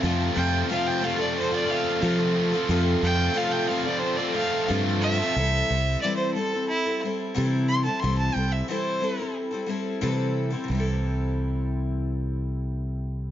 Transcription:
<<
  \new Staff \with { instrumentName = "Fiddle" } { \time 4/4 \key c \major \tempo 4 = 90 r8 g''8 f''16 g''16 f''16 d''16 c''16 d''16 f''8 r4 | r8 g''8 f''16 g''16 f''16 d''16 c''16 d''16 f''8 r8 e''8~ | e''4 d''16 c''16 a'8 e'8 r4 c'''16 a''16 | c'''16 a''16 g''16 e''16 c''4 r2 |
r1 | }
  \new Staff \with { instrumentName = "Twelve-string acoustic guitar" } { \time 4/4 \key c \major <f a c' f' a'>8 <a c' f' a'>8 <f a c' f' a'>8 <a c' f' a'>16 <c' f' a'>8 <c' f' a'>16 <a c' f' a'>8 <f a c' f' a'>8. <c' f' a'>16 | <f a c' f' a'>8 <a c' f' a'>8 <f a c' f' a'>8 <a c' f' a'>16 <c' f' a'>8 <c' f' a'>16 <a c' f' a'>8 <f a c' f' a'>8. <c' f' a'>16 | <c e g c' e' a'>8 <g c' e' a'>8 <c e g c' e' a'>8 <g c' e' a'>16 <g c' e' a'>8 <g c' e' a'>16 <g c' e' a'>8 <c e g c' e' a'>8. <g c' e' a'>16 | <c e g c' e' a'>8 <g c' e' a'>8 <c e g c' e' a'>8 <g c' e' a'>16 <g c' e' a'>8 <g c' e' a'>16 <g c' e' a'>8 <c e g c' e' a'>8. <g c' e' a'>16 |
<c e g c' e' a'>1 | }
  \new Staff \with { instrumentName = "Overdriven electric guitar" } { \time 4/4 \key c \major <f, c f a c' f'>8 <f a c' f'>16 <f a c' f'>16 <f, c f a c' f'>8 <f a c' f'>16 <f a c' f'>8 <f a c' f'>16 <f a c' f'>8 <f, c f a c' f'>16 <f a c' f'>16 <f a c' f'>16 <f a c' f'>16 | <f, c f a c' f'>8 <f a c' f'>16 <f a c' f'>16 <f, c f a c' f'>8 <f a c' f'>16 <f a c' f'>8 <f a c' f'>16 <f a c' f'>8 <f, c f a c' f'>16 <f a c' f'>16 <f a c' f'>16 <f a c' f'>16 | r1 | r1 |
r1 | }
  \new Staff \with { instrumentName = "Fingered electric bass" } { \clef bass \time 4/4 \key c \major f,8 f,8 r2 f4 | f,8 f,8 r2 g,4 | c,8 c,8 r2 c4 | c,8 c,8 r2 c4 |
c,1 | }
>>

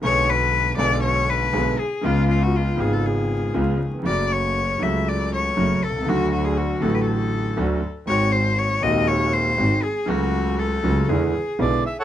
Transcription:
<<
  \new Staff \with { instrumentName = "Bandoneon" } { \time 4/4 \key fis \minor \tempo 4 = 120 r1 | r1 | r1 | r1 |
r1 | r2. d''8 e''16 <a' cis'' fis''>16 | }
  \new Staff \with { instrumentName = "Cello" } { \time 4/4 \key fis \minor cis''8 b'4 d''8 cis''8 b'4 gis'8 | eis'8 eis'16 fis'16 eis'8 gis'16 a'16 gis'4. r8 | d''8 cis''4 e''8 d''8 cis''4 a'8 | fis'8 fis'16 gis'16 fis'8 a'16 b'16 a'4. r8 |
cis''8 bis'8 cis''8 dis''8 cis''8 bis'4 gis'8 | fis'4 a'4 gis'4. r8 | }
  \new Staff \with { instrumentName = "Grand piano" } { \clef bass \time 4/4 \key fis \minor <b,, b, d gis b gis'>4. <b,, b, d gis b gis'>4. <b,, b, d gis b gis'>8 r8 | <cis, cis gis b eis'>4. <gis,, gis, cis gis b eis'>4. <cis, cis gis b eis'>8 r32 dis,32 e,32 eis,32 | <fis, cis fis a fis'>4. <cis, cis fis a fis'>4. <fis, cis fis a fis'>8 r32 b,,32 bis,,32 cis,32 | <d, d fis a fis'>4. <a,, a, d fis a fis'>4. <d, d fis a fis'>8 r8 |
<gis,, gis, dis gis bis fis'>4. <dis,, dis, dis gis bis fis'>4. <gis,, gis, dis gis bis fis'>8 r8 | <cis, cis fis a fis'>4. <cis, cis fis a fis'>8 <e, d e gis b e'>8 r8 <b,, b, d gis b e'>8 r8 | }
  \new Staff \with { instrumentName = "Double bass" } { \clef bass \time 4/4 \key fis \minor b,,4. b,,4. b,,8 r8 | cis,4. gis,,4. cis,8 r8 | fis,,4. cis,4. fis,,8 bis,,8 | d,4. a,,4. d,8 r8 |
gis,,4. dis,4. gis,,8 r8 | cis,4. cis,8 e,8 r8 b,,8 r8 | }
>>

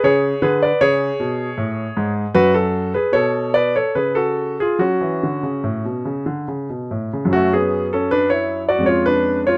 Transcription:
<<
  \new Staff \with { instrumentName = "Grand piano" } { \time 3/4 \key fis \minor \tempo 4 = 76 <gis' cis''>8 <gis' b'>16 <b' d''>16 <gis' cis''>2 | <fis' b'>16 <fis' a'>8 <gis' b'>16 <a' cis''>8 <b' d''>16 <a' cis''>16 <gis' b'>16 <fis' a'>8 <eis' gis'>16 | <cis' fis'>2 r4 | <a fis'>16 <b gis'>8 <cis' a'>16 <d' b'>16 <e' cis''>8 <fis' d''>16 <eis' cis''>16 <d' b'>8 <eis' cis''>16 | }
  \new Staff \with { instrumentName = "Grand piano" } { \clef bass \time 3/4 \key fis \minor cis8 d8 cis8 b,8 a,8 gis,8 | fis,4 b,4 cis4 | fis16 e16 d16 cis16 a,16 b,16 cis16 d16 cis16 b,16 a,16 cis16 | <fis, fis cis'>2 <eis, gis cis'>4 | }
>>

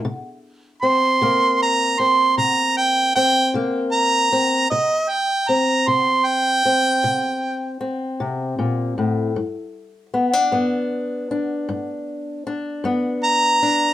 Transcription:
<<
  \new Staff \with { instrumentName = "Harmonica" } { \time 12/8 \key g \dorian \tempo 4. = 52 r4 c'''4 bes''8 c'''8 bes''8 g''8 g''8 r8 bes''4 | ees''8 g''8 bes''8 c'''8 g''2 r2 | r1 r4 bes''4 | }
  \new Staff \with { instrumentName = "Steel-string acoustic guitar" } { \time 12/8 \key g \dorian << { r4 c'8 bes4 c'4. c'8 bes4 c'8 | r4 c'4. c'4. c'2 | r4 b16 d'16 b4 d'4. d'8 b4 d'8 | } \\ { c4 r8 c4 r8 c4 r8 c4 r8 | c4 r8 c4 r8 c4 r8 c8 bes,8 a,8 | g,4 r8 g,4 r8 g,4 r8 g,4 r8 | } >> }
>>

